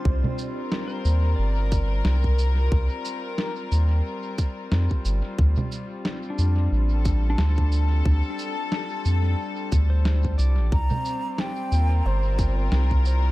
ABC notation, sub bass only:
X:1
M:4/4
L:1/16
Q:"Swing 16ths" 1/4=90
K:Dphr
V:1 name="Sub bass" clef=bass
C,, z4 z E,,2 G,,,4 C,,4 | C,, z4 z E,,2 z4 F,, z G,,, z | D,, z4 z F,,2 A,,,4 D,,4 | D,, z4 z F,,2 z2 D,,4 C,, A,,, |
C,, z4 z E,,2 G,,,4 C,,4 |]